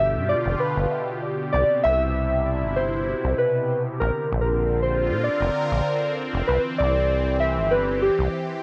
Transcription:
Already playing: acid bass G1, analog synth pad B2 D3 G4, synth keys E5
0.05 analog synth pad F4
0.15 acid bass G2
0.29 synth keys D5
0.46 acid bass F1
0.60 synth keys B4
0.77 acid bass G1
1.53 acid bass C2, analog synth pad C3, synth keys D5
1.83 acid bass C2, synth keys E5
2.23 analog synth pad E4
2.62 acid bass G1
2.76 synth keys C5
3.24 acid bass C2
3.38 synth keys B4
4.00 acid bass A#1, analog synth pad D3, synth keys A#4
4.32 acid bass A#1, analog synth pad C4
4.41 synth keys A#4
4.78 analog synth pad F4, synth keys C5
5.10 acid bass A#2, analog synth pad A#4
5.24 synth keys D5
5.41 acid bass F1
5.72 acid bass A#1
6.33 acid bass F1
6.47 acid bass C2, analog synth pad E3, synth keys B4
6.78 acid bass C2, synth keys D5
7.40 synth keys E5
7.52 analog synth pad G4
7.57 acid bass G1
7.71 synth keys B4
8.02 synth keys G4
8.19 acid bass C2

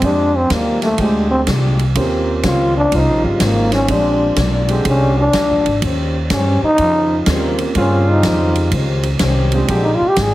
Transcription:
0.02 upright bass F2, steel-string acoustic guitar A#2 G#3 D4, grand piano G#3 C4 D4 F4 G4, trombone D4, kick, ride
0.06 steel-string acoustic guitar G4
0.37 trombone C4
0.50 upright bass D#2, steel-string acoustic guitar A#2 G#3 D4 G4, trombone A#3, kick, snare, hi-hat pedal, ride
0.82 trombone A3, snare, ride
0.98 upright bass D2, steel-string acoustic guitar A#2 G#3 D4, trombone section D3 G#3 C4 G4, trombone G#3, kick, ride
1.02 steel-string acoustic guitar G4
1.31 trombone C4
1.47 upright bass C2, steel-string acoustic guitar A#2 G#3 D4 G4, kick, snare, hi-hat pedal, ride
1.79 ride
1.95 upright bass D#2, steel-string acoustic guitar D#3 C#4 G4 C5, grand piano A#3 C4 C#4 F4 G4, kick, ride
2.43 upright bass C#2, steel-string acoustic guitar D#3 C#4 G4 C5, trombone F4, kick, snare, hi-hat pedal, ride
2.77 trombone D4
2.92 upright bass C2, trombone section C#3 G3 F4, steel-string acoustic guitar D#3 C#4 G4 C5, kick, ride
2.96 trombone D#4
3.08 upright bass A#1
3.24 upright bass G1, trombone G3
3.40 upright bass G#1, steel-string acoustic guitar D#3 C#4 G4 C5, kick, snare, hi-hat pedal, ride
3.45 trombone A#3
3.72 trombone C#4, snare, ride
3.88 upright bass A#1, steel-string acoustic guitar A#2 G#3 D4, grand piano G#3 C4 D4 F4 G4, trombone D4, kick, ride
3.93 steel-string acoustic guitar G4
4.36 upright bass B1, steel-string acoustic guitar A#2 G#3 D4 G4, kick, snare, hi-hat pedal, ride
4.69 trombone section D3 G#3 C4 G4, ride
4.85 upright bass C2, steel-string acoustic guitar A#2 G#3 D4, trombone C#4, kick, ride
4.89 steel-string acoustic guitar G4
5.20 trombone D4
5.33 upright bass D2, steel-string acoustic guitar A#2 G#3 D4 G4, kick, snare, hi-hat pedal, ride
5.50 upright bass A#1
5.66 upright bass G#1, ride
5.82 upright bass D#2, steel-string acoustic guitar D#3 C#4 G4 C5, kick, ride
6.30 upright bass G2, steel-string acoustic guitar D#3 C#4 G4 C5, trombone C#4, kick, snare, hi-hat pedal, ride
6.62 trombone D#4, muted upright bass stroke
6.78 upright bass F2, trombone section C#3 G3 C4 F4, steel-string acoustic guitar D#3 C#4 G4, kick, ride
6.82 steel-string acoustic guitar C5
7.26 upright bass D#2, steel-string acoustic guitar D#3 C#4 G4 C5, grand piano A#3 C4 C#4 F4 G4, kick, snare, hi-hat pedal, ride
7.58 ride
7.75 upright bass G2, trombone section C#3 G3 C4 F4, steel-string acoustic guitar D#3 C#4 G4 C5, kick, ride
7.79 trombone C#4
8.10 trombone D#4
8.23 upright bass F2, steel-string acoustic guitar D#3 C#4 G4 C5, kick, snare, hi-hat pedal, ride
8.55 ride
8.71 upright bass C#2, steel-string acoustic guitar D#3 C#4 G4 C5, kick, ride
9.03 ride
9.19 upright bass C2, steel-string acoustic guitar D#3 C#4, kick, snare, hi-hat pedal, ride
9.23 steel-string acoustic guitar G4 C5
9.52 grand piano G#3 C4 D4 F4 G4, ride
9.68 upright bass A#1, steel-string acoustic guitar A#2 G#3 D4 G4, trombone section D3 G#3 C4 G4, kick, ride
9.84 trombone D#4
9.95 trombone F4
10.01 muted upright bass stroke
10.08 trombone G4
10.16 upright bass G#1, steel-string acoustic guitar A#2 G#3 D4 G4, kick, snare, hi-hat pedal, ride
10.22 trombone G#4

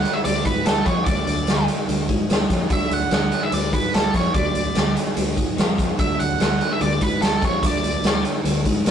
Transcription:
Already playing: overdriven electric guitar D3 F#3 A3 D4, lead electric guitar F#5
0.05 closed hi-hat
0.14 lead electric guitar E5
0.24 fingered electric bass D2, clean electric guitar D3, lead electric guitar D5, closed hi-hat
0.45 fingered electric bass G#2, clean electric guitar G#3, lead electric guitar B4, kick, closed hi-hat
0.65 fingered electric bass D2, clean electric guitar D3, lead electric guitar A4, snare, closed hi-hat
0.86 fingered electric bass F2, clean electric guitar F3, lead electric guitar C#5, kick, closed hi-hat
1.05 fingered electric bass D2, overdriven electric guitar D3 F#3 A3 D4, lead electric guitar D5, kick, closed hi-hat
1.27 fingered electric bass D2, clean electric guitar D3, closed hi-hat
1.47 fingered electric bass D2, clean electric guitar D3, snare, closed hi-hat
1.68 closed hi-hat
1.88 fingered electric bass D2, clean electric guitar D3, closed hi-hat
2.09 fingered electric bass G#2, clean electric guitar G#3, kick, closed hi-hat
2.29 fingered electric bass D2, clean electric guitar D3, snare, closed hi-hat
2.50 fingered electric bass F2, clean electric guitar F3, kick, snare, closed hi-hat
2.70 fingered electric bass D2, overdriven electric guitar D3 F#3 A3 D4, lead electric guitar E5, kick, closed hi-hat
2.91 fingered electric bass D2, clean electric guitar D3, lead electric guitar F#5, closed hi-hat
3.11 fingered electric bass D2, clean electric guitar D3, lead electric guitar F#5, snare, closed hi-hat
3.32 closed hi-hat
3.43 lead electric guitar E5
3.52 fingered electric bass D2, clean electric guitar D3, lead electric guitar D5, closed hi-hat
3.73 fingered electric bass G#2, clean electric guitar G#3, lead electric guitar B4, kick, closed hi-hat
3.93 fingered electric bass D2, clean electric guitar D3, lead electric guitar A4, snare, closed hi-hat
4.14 fingered electric bass F2, clean electric guitar F3, lead electric guitar C#5, kick, snare, closed hi-hat
4.34 fingered electric bass D2, overdriven electric guitar D3 F#3 A3 D4, clean electric guitar D3, lead electric guitar D5, kick, closed hi-hat
4.55 fingered electric bass D2, clean electric guitar D3, closed hi-hat
4.75 fingered electric bass D2, clean electric guitar D3, snare, closed hi-hat
4.97 closed hi-hat
5.16 fingered electric bass D2, clean electric guitar D3, closed hi-hat
5.36 fingered electric bass G#2, clean electric guitar G#3, kick, closed hi-hat
5.57 fingered electric bass F2, clean electric guitar F3, snare, closed hi-hat
5.78 kick, closed hi-hat
5.98 fingered electric bass D2, overdriven electric guitar D3 F#3 A3 D4, clean electric guitar D3, lead electric guitar E5, kick, closed hi-hat
6.19 fingered electric bass D2, clean electric guitar D3, lead electric guitar F#5, closed hi-hat
6.40 fingered electric bass D2, clean electric guitar D3, lead electric guitar F#5, snare, closed hi-hat
6.61 closed hi-hat
6.72 lead electric guitar E5
6.81 fingered electric bass D2, clean electric guitar D3, lead electric guitar D5, closed hi-hat
7.01 fingered electric bass G#2, clean electric guitar G#3, lead electric guitar B4, kick, closed hi-hat
7.22 fingered electric bass D2, clean electric guitar D3, lead electric guitar A4, snare, closed hi-hat
7.42 fingered electric bass F2, clean electric guitar F3, lead electric guitar C#5, kick, closed hi-hat
7.62 fingered electric bass D2, overdriven electric guitar D3 F#3 A3 D4, clean electric guitar D3, kick, closed hi-hat
7.66 lead electric guitar D5
7.84 fingered electric bass D2, clean electric guitar D3, closed hi-hat
8.03 fingered electric bass D2, clean electric guitar D3, snare, closed hi-hat
8.25 closed hi-hat
8.44 fingered electric bass D2, clean electric guitar D3, closed hi-hat
8.65 fingered electric bass G#2, clean electric guitar G#3, kick, closed hi-hat
8.85 fingered electric bass D2, clean electric guitar D3, snare, closed hi-hat

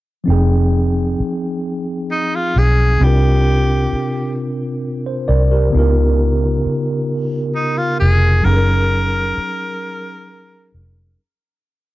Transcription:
0.24 tine electric piano F3 C4 D#4
0.28 fingered electric bass F1, tine electric piano G#4 G5
1.20 muted fingered electric bass stroke
2.11 tenor saxophone D#4
2.35 tenor saxophone F4
2.56 fingered electric bass B1, tenor saxophone G#4
2.97 fingered electric bass C2, tine electric piano C3 C4
3.02 tine electric piano D4 F4, tenor saxophone G4
3.06 tine electric piano A#4
3.93 muted fingered electric bass stroke
5.06 tine electric piano C5
5.28 fingered electric bass C2, tine electric piano A#4 D5
5.51 tine electric piano G4 A#4
5.70 tine electric piano C#3 B3
5.75 fingered electric bass C#2, tine electric piano D#4 F4 A#4
6.66 muted fingered electric bass stroke
7.55 tenor saxophone D#4
7.78 tenor saxophone F4
8.00 fingered electric bass F1, tenor saxophone G#4
8.42 fingered electric bass F#1, tine electric piano F#3 C#4, tenor saxophone A#4
8.47 tine electric piano D#4 G#4
8.51 tine electric piano A4
8.57 tine electric piano A#4
9.37 muted fingered electric bass stroke
10.74 fingered electric bass F1

